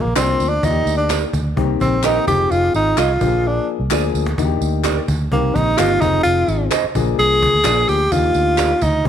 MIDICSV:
0, 0, Header, 1, 8, 480
1, 0, Start_track
1, 0, Key_signature, -3, "major"
1, 0, Tempo, 468019
1, 651, Time_signature, 4, 2, 24, 8
1, 9320, End_track
2, 0, Start_track
2, 0, Title_t, "Clean electric guitar"
2, 0, Program_c, 0, 27
2, 161, Note_on_c, 0, 65, 73
2, 169, Note_on_c, 0, 68, 80
2, 174, Note_on_c, 0, 74, 89
2, 282, Note_off_c, 0, 65, 0
2, 286, Note_off_c, 0, 68, 0
2, 289, Note_off_c, 0, 74, 0
2, 1126, Note_on_c, 0, 67, 77
2, 1135, Note_on_c, 0, 70, 85
2, 1141, Note_on_c, 0, 74, 91
2, 1245, Note_off_c, 0, 67, 0
2, 1250, Note_off_c, 0, 70, 0
2, 1253, Note_off_c, 0, 74, 0
2, 2092, Note_on_c, 0, 67, 68
2, 2100, Note_on_c, 0, 70, 72
2, 2107, Note_on_c, 0, 75, 74
2, 2209, Note_off_c, 0, 67, 0
2, 2213, Note_off_c, 0, 70, 0
2, 2217, Note_off_c, 0, 75, 0
2, 3056, Note_on_c, 0, 65, 78
2, 3063, Note_on_c, 0, 68, 80
2, 3071, Note_on_c, 0, 75, 95
2, 3171, Note_off_c, 0, 65, 0
2, 3175, Note_off_c, 0, 68, 0
2, 3179, Note_off_c, 0, 75, 0
2, 4014, Note_on_c, 0, 65, 71
2, 4018, Note_on_c, 0, 68, 84
2, 4028, Note_on_c, 0, 74, 84
2, 4130, Note_off_c, 0, 65, 0
2, 4132, Note_off_c, 0, 68, 0
2, 4138, Note_off_c, 0, 74, 0
2, 4965, Note_on_c, 0, 67, 77
2, 4974, Note_on_c, 0, 70, 79
2, 4980, Note_on_c, 0, 74, 83
2, 5086, Note_off_c, 0, 67, 0
2, 5090, Note_off_c, 0, 70, 0
2, 5094, Note_off_c, 0, 74, 0
2, 5921, Note_on_c, 0, 67, 79
2, 5930, Note_on_c, 0, 70, 80
2, 5933, Note_on_c, 0, 75, 82
2, 6044, Note_off_c, 0, 67, 0
2, 6048, Note_off_c, 0, 70, 0
2, 6049, Note_off_c, 0, 75, 0
2, 6882, Note_on_c, 0, 68, 84
2, 6890, Note_on_c, 0, 72, 90
2, 6897, Note_on_c, 0, 75, 100
2, 7003, Note_off_c, 0, 68, 0
2, 7008, Note_off_c, 0, 72, 0
2, 7011, Note_off_c, 0, 75, 0
2, 7838, Note_on_c, 0, 65, 79
2, 7847, Note_on_c, 0, 68, 86
2, 7852, Note_on_c, 0, 74, 89
2, 7960, Note_off_c, 0, 65, 0
2, 7964, Note_off_c, 0, 68, 0
2, 7967, Note_off_c, 0, 74, 0
2, 8797, Note_on_c, 0, 67, 89
2, 8807, Note_on_c, 0, 70, 77
2, 8813, Note_on_c, 0, 74, 88
2, 8918, Note_off_c, 0, 67, 0
2, 8923, Note_off_c, 0, 70, 0
2, 8926, Note_off_c, 0, 74, 0
2, 9320, End_track
3, 0, Start_track
3, 0, Title_t, "Tenor saxophone"
3, 0, Program_c, 1, 66
3, 7, Note_on_c, 1, 58, 79
3, 159, Note_off_c, 1, 58, 0
3, 165, Note_on_c, 1, 60, 87
3, 496, Note_on_c, 1, 62, 88
3, 511, Note_off_c, 1, 60, 0
3, 656, Note_on_c, 1, 63, 89
3, 672, Note_off_c, 1, 62, 0
3, 974, Note_off_c, 1, 63, 0
3, 994, Note_on_c, 1, 62, 80
3, 1207, Note_off_c, 1, 62, 0
3, 1857, Note_on_c, 1, 60, 84
3, 2101, Note_on_c, 1, 63, 92
3, 2116, Note_off_c, 1, 60, 0
3, 2327, Note_off_c, 1, 63, 0
3, 2333, Note_on_c, 1, 67, 97
3, 2574, Note_on_c, 1, 65, 93
3, 2589, Note_off_c, 1, 67, 0
3, 2814, Note_off_c, 1, 65, 0
3, 2825, Note_on_c, 1, 63, 85
3, 3062, Note_on_c, 1, 65, 87
3, 3078, Note_off_c, 1, 63, 0
3, 3561, Note_on_c, 1, 62, 77
3, 3576, Note_off_c, 1, 65, 0
3, 3788, Note_off_c, 1, 62, 0
3, 5459, Note_on_c, 1, 58, 85
3, 5691, Note_on_c, 1, 63, 94
3, 5707, Note_off_c, 1, 58, 0
3, 5928, Note_on_c, 1, 65, 104
3, 5943, Note_off_c, 1, 63, 0
3, 6161, Note_on_c, 1, 63, 94
3, 6177, Note_off_c, 1, 65, 0
3, 6386, Note_off_c, 1, 63, 0
3, 6392, Note_on_c, 1, 65, 98
3, 6847, Note_off_c, 1, 65, 0
3, 7376, Note_on_c, 1, 68, 107
3, 8087, Note_on_c, 1, 67, 93
3, 8102, Note_off_c, 1, 68, 0
3, 8327, Note_on_c, 1, 65, 103
3, 8342, Note_off_c, 1, 67, 0
3, 9054, Note_on_c, 1, 63, 88
3, 9069, Note_off_c, 1, 65, 0
3, 9289, Note_off_c, 1, 63, 0
3, 9320, End_track
4, 0, Start_track
4, 0, Title_t, "Upright piano"
4, 0, Program_c, 2, 0
4, 169, Note_on_c, 2, 53, 73
4, 170, Note_on_c, 2, 58, 66
4, 170, Note_on_c, 2, 62, 62
4, 172, Note_on_c, 2, 65, 80
4, 499, Note_off_c, 2, 53, 0
4, 499, Note_off_c, 2, 58, 0
4, 500, Note_off_c, 2, 62, 0
4, 500, Note_off_c, 2, 65, 0
4, 645, Note_on_c, 2, 63, 67
4, 651, Note_on_c, 2, 74, 62
4, 652, Note_on_c, 2, 58, 60
4, 654, Note_on_c, 2, 65, 59
4, 709, Note_on_c, 2, 67, 75
4, 710, Note_off_c, 2, 65, 0
4, 1307, Note_off_c, 2, 63, 0
4, 1310, Note_off_c, 2, 58, 0
4, 1310, Note_off_c, 2, 74, 0
4, 1339, Note_off_c, 2, 67, 0
4, 1605, Note_on_c, 2, 51, 91
4, 1606, Note_on_c, 2, 58, 78
4, 1611, Note_on_c, 2, 60, 83
4, 1612, Note_on_c, 2, 67, 98
4, 1993, Note_off_c, 2, 51, 0
4, 1994, Note_off_c, 2, 58, 0
4, 1996, Note_off_c, 2, 60, 0
4, 1997, Note_off_c, 2, 67, 0
4, 2090, Note_on_c, 2, 51, 69
4, 2093, Note_on_c, 2, 58, 65
4, 2098, Note_on_c, 2, 60, 67
4, 2101, Note_on_c, 2, 67, 83
4, 2320, Note_off_c, 2, 60, 0
4, 2326, Note_off_c, 2, 67, 0
4, 2330, Note_on_c, 2, 53, 74
4, 2332, Note_off_c, 2, 51, 0
4, 2333, Note_off_c, 2, 58, 0
4, 2335, Note_on_c, 2, 60, 66
4, 2336, Note_on_c, 2, 63, 66
4, 2341, Note_on_c, 2, 67, 67
4, 2395, Note_off_c, 2, 67, 0
4, 2395, Note_on_c, 2, 68, 76
4, 3100, Note_off_c, 2, 53, 0
4, 3103, Note_off_c, 2, 60, 0
4, 3103, Note_off_c, 2, 63, 0
4, 3133, Note_off_c, 2, 68, 0
4, 3291, Note_on_c, 2, 53, 73
4, 3291, Note_on_c, 2, 62, 67
4, 3294, Note_on_c, 2, 58, 72
4, 3296, Note_on_c, 2, 67, 67
4, 3352, Note_on_c, 2, 68, 81
4, 3353, Note_off_c, 2, 67, 0
4, 3869, Note_off_c, 2, 53, 0
4, 3869, Note_off_c, 2, 62, 0
4, 3870, Note_off_c, 2, 58, 0
4, 3899, Note_off_c, 2, 68, 0
4, 4012, Note_on_c, 2, 58, 76
4, 4013, Note_on_c, 2, 53, 87
4, 4014, Note_on_c, 2, 62, 76
4, 4020, Note_on_c, 2, 68, 96
4, 4342, Note_off_c, 2, 53, 0
4, 4342, Note_off_c, 2, 58, 0
4, 4343, Note_off_c, 2, 62, 0
4, 4346, Note_off_c, 2, 68, 0
4, 4495, Note_on_c, 2, 58, 72
4, 4495, Note_on_c, 2, 62, 72
4, 4496, Note_on_c, 2, 63, 78
4, 4499, Note_on_c, 2, 66, 66
4, 4554, Note_off_c, 2, 66, 0
4, 4555, Note_on_c, 2, 67, 86
4, 5152, Note_off_c, 2, 58, 0
4, 5152, Note_off_c, 2, 62, 0
4, 5153, Note_off_c, 2, 63, 0
4, 5182, Note_off_c, 2, 67, 0
4, 5453, Note_on_c, 2, 51, 75
4, 5455, Note_on_c, 2, 60, 68
4, 5457, Note_on_c, 2, 58, 68
4, 5458, Note_on_c, 2, 67, 79
4, 5837, Note_off_c, 2, 51, 0
4, 5838, Note_off_c, 2, 60, 0
4, 5839, Note_off_c, 2, 58, 0
4, 5839, Note_off_c, 2, 67, 0
4, 5924, Note_on_c, 2, 51, 72
4, 5926, Note_on_c, 2, 67, 77
4, 5928, Note_on_c, 2, 58, 65
4, 5930, Note_on_c, 2, 60, 63
4, 6153, Note_off_c, 2, 60, 0
4, 6168, Note_on_c, 2, 60, 68
4, 6169, Note_off_c, 2, 51, 0
4, 6169, Note_off_c, 2, 67, 0
4, 6170, Note_on_c, 2, 53, 70
4, 6170, Note_on_c, 2, 63, 67
4, 6171, Note_off_c, 2, 58, 0
4, 6175, Note_on_c, 2, 68, 80
4, 6938, Note_off_c, 2, 53, 0
4, 6938, Note_off_c, 2, 60, 0
4, 6938, Note_off_c, 2, 63, 0
4, 6941, Note_off_c, 2, 68, 0
4, 7130, Note_on_c, 2, 58, 88
4, 7133, Note_on_c, 2, 53, 88
4, 7134, Note_on_c, 2, 62, 85
4, 7136, Note_on_c, 2, 68, 97
4, 7705, Note_off_c, 2, 58, 0
4, 7707, Note_off_c, 2, 53, 0
4, 7708, Note_off_c, 2, 62, 0
4, 7708, Note_off_c, 2, 68, 0
4, 7848, Note_on_c, 2, 53, 74
4, 7848, Note_on_c, 2, 58, 69
4, 7850, Note_on_c, 2, 62, 68
4, 7851, Note_on_c, 2, 68, 82
4, 8177, Note_off_c, 2, 53, 0
4, 8177, Note_off_c, 2, 58, 0
4, 8178, Note_off_c, 2, 62, 0
4, 8178, Note_off_c, 2, 68, 0
4, 8330, Note_on_c, 2, 63, 72
4, 8335, Note_on_c, 2, 58, 62
4, 8335, Note_on_c, 2, 62, 65
4, 8335, Note_on_c, 2, 67, 78
4, 8985, Note_off_c, 2, 63, 0
4, 8988, Note_off_c, 2, 58, 0
4, 8988, Note_off_c, 2, 62, 0
4, 8988, Note_off_c, 2, 67, 0
4, 9275, Note_on_c, 2, 58, 73
4, 9277, Note_on_c, 2, 51, 77
4, 9277, Note_on_c, 2, 60, 71
4, 9283, Note_on_c, 2, 67, 84
4, 9320, Note_off_c, 2, 51, 0
4, 9320, Note_off_c, 2, 58, 0
4, 9320, Note_off_c, 2, 60, 0
4, 9320, Note_off_c, 2, 67, 0
4, 9320, End_track
5, 0, Start_track
5, 0, Title_t, "Fingered electric bass"
5, 0, Program_c, 3, 33
5, 49, Note_on_c, 3, 34, 77
5, 144, Note_off_c, 3, 34, 0
5, 171, Note_on_c, 3, 36, 78
5, 361, Note_off_c, 3, 36, 0
5, 408, Note_on_c, 3, 38, 86
5, 599, Note_off_c, 3, 38, 0
5, 648, Note_on_c, 3, 39, 105
5, 840, Note_off_c, 3, 39, 0
5, 878, Note_on_c, 3, 38, 101
5, 1264, Note_off_c, 3, 38, 0
5, 1368, Note_on_c, 3, 38, 90
5, 1560, Note_off_c, 3, 38, 0
5, 1612, Note_on_c, 3, 36, 104
5, 1802, Note_off_c, 3, 36, 0
5, 1858, Note_on_c, 3, 34, 84
5, 2236, Note_off_c, 3, 34, 0
5, 2334, Note_on_c, 3, 29, 93
5, 2524, Note_off_c, 3, 29, 0
5, 2571, Note_on_c, 3, 29, 89
5, 2762, Note_off_c, 3, 29, 0
5, 2814, Note_on_c, 3, 32, 81
5, 3004, Note_off_c, 3, 32, 0
5, 3050, Note_on_c, 3, 36, 90
5, 3242, Note_off_c, 3, 36, 0
5, 3293, Note_on_c, 3, 34, 98
5, 3674, Note_off_c, 3, 34, 0
5, 3892, Note_on_c, 3, 36, 71
5, 3988, Note_off_c, 3, 36, 0
5, 4007, Note_on_c, 3, 38, 84
5, 4200, Note_off_c, 3, 38, 0
5, 4250, Note_on_c, 3, 38, 85
5, 4442, Note_off_c, 3, 38, 0
5, 4491, Note_on_c, 3, 39, 97
5, 4682, Note_off_c, 3, 39, 0
5, 4725, Note_on_c, 3, 38, 92
5, 5109, Note_off_c, 3, 38, 0
5, 5214, Note_on_c, 3, 38, 91
5, 5404, Note_off_c, 3, 38, 0
5, 5450, Note_on_c, 3, 36, 101
5, 5641, Note_off_c, 3, 36, 0
5, 5699, Note_on_c, 3, 34, 86
5, 5887, Note_off_c, 3, 34, 0
5, 5939, Note_on_c, 3, 31, 89
5, 6127, Note_off_c, 3, 31, 0
5, 6171, Note_on_c, 3, 29, 92
5, 6362, Note_off_c, 3, 29, 0
5, 6410, Note_on_c, 3, 29, 96
5, 6601, Note_off_c, 3, 29, 0
5, 6646, Note_on_c, 3, 32, 96
5, 6838, Note_off_c, 3, 32, 0
5, 7129, Note_on_c, 3, 34, 106
5, 7319, Note_off_c, 3, 34, 0
5, 7368, Note_on_c, 3, 36, 88
5, 7654, Note_off_c, 3, 36, 0
5, 7726, Note_on_c, 3, 38, 75
5, 7823, Note_off_c, 3, 38, 0
5, 7849, Note_on_c, 3, 34, 91
5, 8039, Note_off_c, 3, 34, 0
5, 8092, Note_on_c, 3, 38, 88
5, 8280, Note_off_c, 3, 38, 0
5, 8326, Note_on_c, 3, 39, 99
5, 8516, Note_off_c, 3, 39, 0
5, 8563, Note_on_c, 3, 38, 94
5, 8944, Note_off_c, 3, 38, 0
5, 9048, Note_on_c, 3, 38, 93
5, 9237, Note_off_c, 3, 38, 0
5, 9283, Note_on_c, 3, 36, 99
5, 9320, Note_off_c, 3, 36, 0
5, 9320, End_track
6, 0, Start_track
6, 0, Title_t, "Cajon"
6, 49, Note_on_c, 9, 38, 34
6, 152, Note_off_c, 9, 38, 0
6, 165, Note_on_c, 9, 38, 103
6, 268, Note_off_c, 9, 38, 0
6, 405, Note_on_c, 9, 38, 42
6, 508, Note_off_c, 9, 38, 0
6, 647, Note_on_c, 9, 36, 101
6, 750, Note_off_c, 9, 36, 0
6, 772, Note_on_c, 9, 38, 32
6, 874, Note_off_c, 9, 38, 0
6, 886, Note_on_c, 9, 38, 41
6, 988, Note_off_c, 9, 38, 0
6, 1126, Note_on_c, 9, 38, 99
6, 1228, Note_off_c, 9, 38, 0
6, 1368, Note_on_c, 9, 36, 84
6, 1471, Note_off_c, 9, 36, 0
6, 1611, Note_on_c, 9, 36, 97
6, 1714, Note_off_c, 9, 36, 0
6, 1858, Note_on_c, 9, 36, 100
6, 1961, Note_off_c, 9, 36, 0
6, 1979, Note_on_c, 9, 38, 33
6, 2082, Note_off_c, 9, 38, 0
6, 2093, Note_on_c, 9, 38, 102
6, 2196, Note_off_c, 9, 38, 0
6, 2332, Note_on_c, 9, 36, 101
6, 2435, Note_off_c, 9, 36, 0
6, 2699, Note_on_c, 9, 38, 33
6, 2801, Note_off_c, 9, 38, 0
6, 3057, Note_on_c, 9, 38, 101
6, 3159, Note_off_c, 9, 38, 0
6, 3293, Note_on_c, 9, 36, 95
6, 3396, Note_off_c, 9, 36, 0
6, 3528, Note_on_c, 9, 38, 45
6, 3630, Note_off_c, 9, 38, 0
6, 3768, Note_on_c, 9, 38, 39
6, 3870, Note_off_c, 9, 38, 0
6, 4013, Note_on_c, 9, 38, 53
6, 4116, Note_off_c, 9, 38, 0
6, 4252, Note_on_c, 9, 38, 41
6, 4355, Note_off_c, 9, 38, 0
6, 4373, Note_on_c, 9, 38, 84
6, 4475, Note_off_c, 9, 38, 0
6, 4492, Note_on_c, 9, 36, 102
6, 4595, Note_off_c, 9, 36, 0
6, 4619, Note_on_c, 9, 38, 33
6, 4722, Note_off_c, 9, 38, 0
6, 4732, Note_on_c, 9, 38, 42
6, 4834, Note_off_c, 9, 38, 0
6, 4978, Note_on_c, 9, 38, 109
6, 5080, Note_off_c, 9, 38, 0
6, 5213, Note_on_c, 9, 36, 83
6, 5315, Note_off_c, 9, 36, 0
6, 5452, Note_on_c, 9, 36, 96
6, 5554, Note_off_c, 9, 36, 0
6, 5698, Note_on_c, 9, 36, 104
6, 5800, Note_off_c, 9, 36, 0
6, 5819, Note_on_c, 9, 38, 35
6, 5921, Note_off_c, 9, 38, 0
6, 5932, Note_on_c, 9, 38, 110
6, 6035, Note_off_c, 9, 38, 0
6, 6171, Note_on_c, 9, 36, 104
6, 6274, Note_off_c, 9, 36, 0
6, 6415, Note_on_c, 9, 38, 47
6, 6517, Note_off_c, 9, 38, 0
6, 6541, Note_on_c, 9, 38, 32
6, 6643, Note_off_c, 9, 38, 0
6, 6655, Note_on_c, 9, 38, 39
6, 6757, Note_off_c, 9, 38, 0
6, 6890, Note_on_c, 9, 38, 99
6, 6993, Note_off_c, 9, 38, 0
6, 7130, Note_on_c, 9, 36, 94
6, 7233, Note_off_c, 9, 36, 0
6, 7615, Note_on_c, 9, 36, 104
6, 7718, Note_off_c, 9, 36, 0
6, 7736, Note_on_c, 9, 38, 35
6, 7838, Note_off_c, 9, 38, 0
6, 7846, Note_on_c, 9, 38, 110
6, 7948, Note_off_c, 9, 38, 0
6, 8087, Note_on_c, 9, 38, 46
6, 8190, Note_off_c, 9, 38, 0
6, 8327, Note_on_c, 9, 36, 99
6, 8430, Note_off_c, 9, 36, 0
6, 8453, Note_on_c, 9, 38, 33
6, 8556, Note_off_c, 9, 38, 0
6, 8567, Note_on_c, 9, 38, 43
6, 8670, Note_off_c, 9, 38, 0
6, 8809, Note_on_c, 9, 38, 108
6, 8912, Note_off_c, 9, 38, 0
6, 9044, Note_on_c, 9, 36, 92
6, 9147, Note_off_c, 9, 36, 0
6, 9284, Note_on_c, 9, 36, 95
6, 9320, Note_off_c, 9, 36, 0
6, 9320, End_track
7, 0, Start_track
7, 0, Title_t, "Muted fingered electric bass strokes"
7, 7017, Note_on_c, 9, 29, 43
7, 7119, Note_off_c, 9, 29, 0
7, 9320, End_track
8, 0, Start_track
8, 0, Title_t, "Drums"
8, 166, Note_on_c, 9, 39, 100
8, 166, Note_on_c, 9, 54, 101
8, 268, Note_off_c, 9, 39, 0
8, 268, Note_off_c, 9, 54, 0
8, 411, Note_on_c, 9, 54, 57
8, 513, Note_off_c, 9, 54, 0
8, 654, Note_on_c, 9, 54, 57
8, 756, Note_off_c, 9, 54, 0
8, 891, Note_on_c, 9, 54, 56
8, 994, Note_off_c, 9, 54, 0
8, 1127, Note_on_c, 9, 39, 85
8, 1127, Note_on_c, 9, 54, 82
8, 1229, Note_off_c, 9, 39, 0
8, 1229, Note_off_c, 9, 54, 0
8, 1374, Note_on_c, 9, 54, 52
8, 1477, Note_off_c, 9, 54, 0
8, 1856, Note_on_c, 9, 54, 31
8, 1959, Note_off_c, 9, 54, 0
8, 2085, Note_on_c, 9, 39, 102
8, 2085, Note_on_c, 9, 54, 102
8, 2188, Note_off_c, 9, 39, 0
8, 2188, Note_off_c, 9, 54, 0
8, 2336, Note_on_c, 9, 54, 54
8, 2438, Note_off_c, 9, 54, 0
8, 2581, Note_on_c, 9, 54, 54
8, 2684, Note_off_c, 9, 54, 0
8, 2815, Note_on_c, 9, 54, 54
8, 2918, Note_off_c, 9, 54, 0
8, 3052, Note_on_c, 9, 39, 85
8, 3052, Note_on_c, 9, 54, 86
8, 3155, Note_off_c, 9, 39, 0
8, 3155, Note_off_c, 9, 54, 0
8, 3291, Note_on_c, 9, 54, 50
8, 3394, Note_off_c, 9, 54, 0
8, 4006, Note_on_c, 9, 39, 103
8, 4006, Note_on_c, 9, 54, 97
8, 4108, Note_off_c, 9, 39, 0
8, 4108, Note_off_c, 9, 54, 0
8, 4256, Note_on_c, 9, 54, 55
8, 4358, Note_off_c, 9, 54, 0
8, 4502, Note_on_c, 9, 54, 56
8, 4605, Note_off_c, 9, 54, 0
8, 4734, Note_on_c, 9, 54, 56
8, 4837, Note_off_c, 9, 54, 0
8, 4966, Note_on_c, 9, 39, 86
8, 4966, Note_on_c, 9, 54, 90
8, 5068, Note_off_c, 9, 39, 0
8, 5068, Note_off_c, 9, 54, 0
8, 5213, Note_on_c, 9, 54, 52
8, 5316, Note_off_c, 9, 54, 0
8, 5700, Note_on_c, 9, 54, 32
8, 5803, Note_off_c, 9, 54, 0
8, 5932, Note_on_c, 9, 39, 103
8, 5932, Note_on_c, 9, 54, 103
8, 6034, Note_off_c, 9, 39, 0
8, 6034, Note_off_c, 9, 54, 0
8, 6170, Note_on_c, 9, 54, 56
8, 6273, Note_off_c, 9, 54, 0
8, 6410, Note_on_c, 9, 54, 55
8, 6512, Note_off_c, 9, 54, 0
8, 6652, Note_on_c, 9, 54, 56
8, 6754, Note_off_c, 9, 54, 0
8, 6885, Note_on_c, 9, 39, 90
8, 6885, Note_on_c, 9, 54, 91
8, 6987, Note_off_c, 9, 39, 0
8, 6987, Note_off_c, 9, 54, 0
8, 7130, Note_on_c, 9, 54, 52
8, 7233, Note_off_c, 9, 54, 0
8, 7375, Note_on_c, 9, 54, 35
8, 7478, Note_off_c, 9, 54, 0
8, 7615, Note_on_c, 9, 54, 36
8, 7718, Note_off_c, 9, 54, 0
8, 7840, Note_on_c, 9, 39, 101
8, 7840, Note_on_c, 9, 54, 96
8, 7943, Note_off_c, 9, 39, 0
8, 7943, Note_off_c, 9, 54, 0
8, 8090, Note_on_c, 9, 54, 57
8, 8192, Note_off_c, 9, 54, 0
8, 8327, Note_on_c, 9, 54, 60
8, 8430, Note_off_c, 9, 54, 0
8, 8558, Note_on_c, 9, 54, 58
8, 8661, Note_off_c, 9, 54, 0
8, 8799, Note_on_c, 9, 39, 89
8, 8799, Note_on_c, 9, 54, 86
8, 8901, Note_off_c, 9, 39, 0
8, 8901, Note_off_c, 9, 54, 0
8, 9041, Note_on_c, 9, 54, 54
8, 9143, Note_off_c, 9, 54, 0
8, 9320, End_track
0, 0, End_of_file